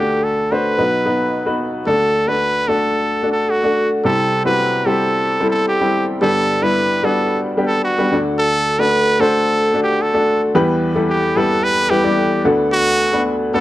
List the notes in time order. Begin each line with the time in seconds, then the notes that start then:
Already playing: D2 D3 A3 D4 F#4 G4 A4
0.24 A4
0.51 A3 D4 F#4 B4 C5
0.78 B1 B2 B3 D#4 F#4 B4
1.05 B3 D#4 F#4 B4
1.46 B3 D#4 F#4 B4
1.87 D2 D3 A3 D4 F#4 A4
2.27 A3 D4 F#4 A4 B4
2.68 A3 D4 F#4 A4
3.23 A3 D4 F#4 A4
3.32 A4
3.50 F#4
3.63 A3 D4 F#4 A4
4.04 C2 C3 G3 C4 E4 G4 A4
4.45 G3 C4 E4 F#4 B4
4.86 G3 C4 E4 G4 A4
5.40 G3 C4 E4 A4
5.50 A4
5.68 G4
5.81 G3 C4 E4 G4
6.21 G1 G2 G3 B3 D4 G4 A4
6.62 G3 B3 D4 E4 B4
7.03 G3 B3 D4 F#4 A4
7.57 G3 B3 D4 G4
7.66 A4
7.84 F#4
7.98 G3 B3 D4 G4
8.12 D2 D3 A3 D4 F#4 A4
8.39 A4
8.79 A3 D4 F#4 A4 B4
9.19 A3 D4 F#4 A4 C5
9.74 A3 D4 F#4 A4
9.84 G4
10.02 A4
10.14 A3 D4 F#4 A4
10.55 E2 E3 G3 B3 E4 G4 B4
10.95 G3 B3 E4 G4 A4
11.10 G4
11.36 G3 B3 E4 G4 A4 B4
11.64 B4
11.90 G3 B3 E4 G4 B4
12.04 G3 B3 E4 G4 D5
12.45 D2 D3 A3 B3 D4 F#4 A4
12.73 F#4
13.13 A3 B3 D4 F#4 B4
13.54 A3 B3 D4 F#4 A4